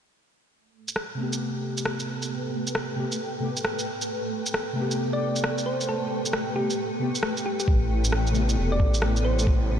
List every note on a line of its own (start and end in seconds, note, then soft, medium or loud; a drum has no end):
0.51 9.79 A3 medium
0.61 9.79 A4 medium
0.73 9.79 B4 medium
0.88 shaker medium
0.96 cross-stick medium
1.15 2.94 C3 medium
1.15 2.95 A3 medium
1.20 2.96 B3 medium
1.20 2.98 G4 loud
1.33 9.79 G5 medium
1.33 shaker medium
1.77 shaker soft
1.85 cross-stick loud
2.00 shaker soft
2.22 shaker medium
2.67 shaker medium
2.75 cross-stick loud
2.95 3.04 C3 medium
2.95 3.05 A3 medium
2.95 3.06 B3 medium
3.00 3.06 G4 medium
3.12 shaker medium
3.40 3.49 C3 medium
3.40 3.50 A3 medium
3.40 3.50 B3 medium
3.44 3.51 G4 loud
3.56 shaker medium
3.64 cross-stick loud
3.79 shaker soft
4.01 shaker medium
4.46 shaker medium
4.54 cross-stick loud
4.73 6.52 C3 medium
4.73 6.53 A3 medium
4.78 6.55 B3 medium
4.78 6.56 G4 loud
4.91 shaker medium
5.13 5.37 D5 medium
5.36 shaker medium
5.44 cross-stick loud
5.58 shaker soft
5.66 5.90 C5 medium
5.81 shaker medium
5.89 6.12 A4 medium
6.25 shaker medium
6.33 cross-stick loud
6.54 6.63 C3 medium
6.54 6.64 A3 medium
6.54 6.64 B3 medium
6.54 6.80 G4 medium
6.58 6.65 G4 medium
6.70 shaker soft
6.99 7.08 C3 medium
6.99 7.08 A3 medium
6.99 7.09 B3 medium
6.99 7.10 G4 loud
7.15 shaker soft
7.23 cross-stick loud
7.37 shaker soft
7.46 7.55 G4 medium
7.60 7.65 G4 medium
7.60 shaker medium
7.68 8.56 A1 loud
7.68 kick loud
8.04 shaker medium
8.12 cross-stick loud
8.27 shaker soft
8.31 9.79 C3 medium
8.31 9.79 A3 medium
8.31 shaker soft
8.37 9.79 B3 medium
8.37 9.79 G4 loud
8.49 shaker medium
8.58 8.81 E1 medium
8.72 8.95 D5 medium
8.80 9.79 A1 medium
8.80 kick loud
8.94 shaker medium
9.02 cross-stick loud
9.16 shaker soft
9.25 9.48 C5 medium
9.39 shaker medium
9.47 kick loud